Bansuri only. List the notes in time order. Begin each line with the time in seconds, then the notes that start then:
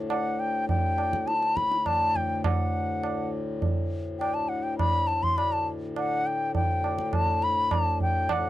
0.10 F#5
0.40 G5
0.69 G5
1.27 A5
1.56 B5
1.87 A5
2.16 G5
2.46 F#5
4.20 G5
4.34 A5
4.49 F#5
4.63 G5
4.78 B5
5.07 A5
5.23 C6
5.37 B5
5.52 A5
5.97 F#5
6.26 G5
6.55 G5
7.14 A5
7.44 B5
7.73 A5
8.02 G5
8.32 F#5